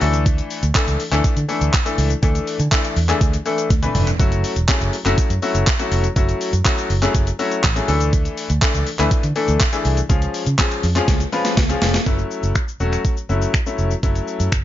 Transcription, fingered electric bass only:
0, 0, Header, 1, 2, 480
1, 0, Start_track
1, 0, Key_signature, 3, "minor"
1, 0, Tempo, 491803
1, 255, Time_signature, 4, 2, 24, 8
1, 14292, End_track
2, 0, Start_track
2, 0, Title_t, "Fingered electric bass"
2, 0, Program_c, 0, 33
2, 15, Note_on_c, 0, 38, 108
2, 380, Note_off_c, 0, 38, 0
2, 613, Note_on_c, 0, 38, 91
2, 687, Note_off_c, 0, 38, 0
2, 854, Note_on_c, 0, 37, 101
2, 927, Note_off_c, 0, 37, 0
2, 1094, Note_on_c, 0, 38, 97
2, 1167, Note_off_c, 0, 38, 0
2, 1333, Note_on_c, 0, 50, 100
2, 1407, Note_off_c, 0, 50, 0
2, 1574, Note_on_c, 0, 38, 86
2, 1647, Note_off_c, 0, 38, 0
2, 1933, Note_on_c, 0, 37, 105
2, 2080, Note_off_c, 0, 37, 0
2, 2175, Note_on_c, 0, 38, 121
2, 2321, Note_off_c, 0, 38, 0
2, 2534, Note_on_c, 0, 50, 109
2, 2607, Note_off_c, 0, 50, 0
2, 2894, Note_on_c, 0, 40, 86
2, 3040, Note_off_c, 0, 40, 0
2, 3134, Note_on_c, 0, 38, 89
2, 3281, Note_off_c, 0, 38, 0
2, 3615, Note_on_c, 0, 38, 103
2, 3761, Note_off_c, 0, 38, 0
2, 3855, Note_on_c, 0, 29, 107
2, 4001, Note_off_c, 0, 29, 0
2, 4095, Note_on_c, 0, 30, 110
2, 4314, Note_off_c, 0, 30, 0
2, 4454, Note_on_c, 0, 28, 96
2, 4527, Note_off_c, 0, 28, 0
2, 4693, Note_on_c, 0, 30, 92
2, 4767, Note_off_c, 0, 30, 0
2, 4933, Note_on_c, 0, 30, 94
2, 5007, Note_off_c, 0, 30, 0
2, 5172, Note_on_c, 0, 42, 93
2, 5246, Note_off_c, 0, 42, 0
2, 5413, Note_on_c, 0, 30, 85
2, 5487, Note_off_c, 0, 30, 0
2, 5773, Note_on_c, 0, 29, 101
2, 5919, Note_off_c, 0, 29, 0
2, 6015, Note_on_c, 0, 30, 122
2, 6161, Note_off_c, 0, 30, 0
2, 6375, Note_on_c, 0, 42, 98
2, 6448, Note_off_c, 0, 42, 0
2, 6735, Note_on_c, 0, 30, 90
2, 6881, Note_off_c, 0, 30, 0
2, 6974, Note_on_c, 0, 30, 102
2, 7121, Note_off_c, 0, 30, 0
2, 7456, Note_on_c, 0, 33, 101
2, 7602, Note_off_c, 0, 33, 0
2, 7696, Note_on_c, 0, 38, 114
2, 8061, Note_off_c, 0, 38, 0
2, 8296, Note_on_c, 0, 38, 97
2, 8369, Note_off_c, 0, 38, 0
2, 8535, Note_on_c, 0, 37, 97
2, 8608, Note_off_c, 0, 37, 0
2, 8776, Note_on_c, 0, 38, 88
2, 8848, Note_off_c, 0, 38, 0
2, 9015, Note_on_c, 0, 50, 100
2, 9088, Note_off_c, 0, 50, 0
2, 9256, Note_on_c, 0, 38, 91
2, 9328, Note_off_c, 0, 38, 0
2, 9615, Note_on_c, 0, 36, 104
2, 9761, Note_off_c, 0, 36, 0
2, 9855, Note_on_c, 0, 37, 120
2, 10001, Note_off_c, 0, 37, 0
2, 10216, Note_on_c, 0, 49, 102
2, 10288, Note_off_c, 0, 49, 0
2, 10576, Note_on_c, 0, 41, 97
2, 10721, Note_off_c, 0, 41, 0
2, 10814, Note_on_c, 0, 37, 95
2, 10960, Note_off_c, 0, 37, 0
2, 11295, Note_on_c, 0, 37, 99
2, 11441, Note_off_c, 0, 37, 0
2, 11535, Note_on_c, 0, 29, 95
2, 11681, Note_off_c, 0, 29, 0
2, 11775, Note_on_c, 0, 30, 105
2, 11921, Note_off_c, 0, 30, 0
2, 12135, Note_on_c, 0, 30, 93
2, 12208, Note_off_c, 0, 30, 0
2, 12494, Note_on_c, 0, 28, 84
2, 12640, Note_off_c, 0, 28, 0
2, 12975, Note_on_c, 0, 30, 83
2, 13121, Note_off_c, 0, 30, 0
2, 13455, Note_on_c, 0, 29, 90
2, 13601, Note_off_c, 0, 29, 0
2, 13695, Note_on_c, 0, 30, 111
2, 13841, Note_off_c, 0, 30, 0
2, 14054, Note_on_c, 0, 42, 95
2, 14127, Note_off_c, 0, 42, 0
2, 14173, Note_on_c, 0, 30, 89
2, 14292, Note_off_c, 0, 30, 0
2, 14292, End_track
0, 0, End_of_file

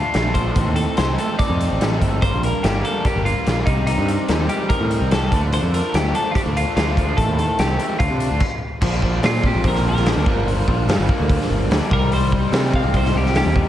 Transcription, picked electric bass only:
0, 0, Header, 1, 2, 480
1, 0, Start_track
1, 0, Key_signature, -2, "minor"
1, 0, Tempo, 412655
1, 654, Time_signature, 4, 2, 24, 8
1, 15920, End_track
2, 0, Start_track
2, 0, Title_t, "Picked electric bass"
2, 0, Program_c, 0, 34
2, 173, Note_on_c, 0, 34, 84
2, 596, Note_off_c, 0, 34, 0
2, 650, Note_on_c, 0, 33, 86
2, 757, Note_off_c, 0, 33, 0
2, 772, Note_on_c, 0, 39, 81
2, 985, Note_off_c, 0, 39, 0
2, 1139, Note_on_c, 0, 36, 80
2, 1349, Note_off_c, 0, 36, 0
2, 1737, Note_on_c, 0, 41, 80
2, 1950, Note_off_c, 0, 41, 0
2, 1987, Note_on_c, 0, 33, 79
2, 2090, Note_off_c, 0, 33, 0
2, 2103, Note_on_c, 0, 33, 64
2, 2320, Note_off_c, 0, 33, 0
2, 2344, Note_on_c, 0, 31, 71
2, 2560, Note_off_c, 0, 31, 0
2, 2582, Note_on_c, 0, 31, 86
2, 2689, Note_off_c, 0, 31, 0
2, 2721, Note_on_c, 0, 34, 73
2, 2925, Note_off_c, 0, 34, 0
2, 3071, Note_on_c, 0, 31, 85
2, 3280, Note_off_c, 0, 31, 0
2, 3670, Note_on_c, 0, 31, 77
2, 3880, Note_off_c, 0, 31, 0
2, 4036, Note_on_c, 0, 34, 86
2, 4243, Note_off_c, 0, 34, 0
2, 4266, Note_on_c, 0, 36, 78
2, 4583, Note_off_c, 0, 36, 0
2, 4629, Note_on_c, 0, 43, 86
2, 4839, Note_off_c, 0, 43, 0
2, 4989, Note_on_c, 0, 39, 82
2, 5200, Note_off_c, 0, 39, 0
2, 5594, Note_on_c, 0, 45, 81
2, 5803, Note_off_c, 0, 45, 0
2, 5822, Note_on_c, 0, 36, 82
2, 6141, Note_off_c, 0, 36, 0
2, 6190, Note_on_c, 0, 38, 79
2, 6505, Note_off_c, 0, 38, 0
2, 6543, Note_on_c, 0, 41, 78
2, 6756, Note_off_c, 0, 41, 0
2, 6909, Note_on_c, 0, 38, 84
2, 7119, Note_off_c, 0, 38, 0
2, 7512, Note_on_c, 0, 38, 75
2, 7721, Note_off_c, 0, 38, 0
2, 7869, Note_on_c, 0, 38, 92
2, 8289, Note_off_c, 0, 38, 0
2, 8345, Note_on_c, 0, 33, 92
2, 8451, Note_off_c, 0, 33, 0
2, 8473, Note_on_c, 0, 39, 83
2, 8681, Note_off_c, 0, 39, 0
2, 8828, Note_on_c, 0, 36, 83
2, 9038, Note_off_c, 0, 36, 0
2, 9305, Note_on_c, 0, 38, 99
2, 9411, Note_off_c, 0, 38, 0
2, 9427, Note_on_c, 0, 48, 89
2, 9637, Note_off_c, 0, 48, 0
2, 9665, Note_on_c, 0, 38, 77
2, 9770, Note_off_c, 0, 38, 0
2, 10258, Note_on_c, 0, 34, 93
2, 10681, Note_off_c, 0, 34, 0
2, 10738, Note_on_c, 0, 46, 95
2, 11056, Note_off_c, 0, 46, 0
2, 11102, Note_on_c, 0, 34, 90
2, 11208, Note_off_c, 0, 34, 0
2, 11215, Note_on_c, 0, 34, 92
2, 11429, Note_off_c, 0, 34, 0
2, 11456, Note_on_c, 0, 34, 92
2, 11774, Note_off_c, 0, 34, 0
2, 11820, Note_on_c, 0, 38, 78
2, 11926, Note_off_c, 0, 38, 0
2, 11941, Note_on_c, 0, 31, 90
2, 12361, Note_off_c, 0, 31, 0
2, 12424, Note_on_c, 0, 34, 83
2, 12632, Note_off_c, 0, 34, 0
2, 12653, Note_on_c, 0, 43, 90
2, 12761, Note_off_c, 0, 43, 0
2, 12778, Note_on_c, 0, 31, 85
2, 12883, Note_off_c, 0, 31, 0
2, 13025, Note_on_c, 0, 38, 79
2, 13232, Note_off_c, 0, 38, 0
2, 13377, Note_on_c, 0, 31, 85
2, 13587, Note_off_c, 0, 31, 0
2, 13610, Note_on_c, 0, 38, 84
2, 13718, Note_off_c, 0, 38, 0
2, 13861, Note_on_c, 0, 36, 85
2, 14489, Note_off_c, 0, 36, 0
2, 14565, Note_on_c, 0, 48, 94
2, 14883, Note_off_c, 0, 48, 0
2, 14932, Note_on_c, 0, 36, 92
2, 15037, Note_off_c, 0, 36, 0
2, 15055, Note_on_c, 0, 36, 104
2, 15264, Note_off_c, 0, 36, 0
2, 15287, Note_on_c, 0, 36, 98
2, 15603, Note_off_c, 0, 36, 0
2, 15651, Note_on_c, 0, 39, 80
2, 15860, Note_off_c, 0, 39, 0
2, 15920, End_track
0, 0, End_of_file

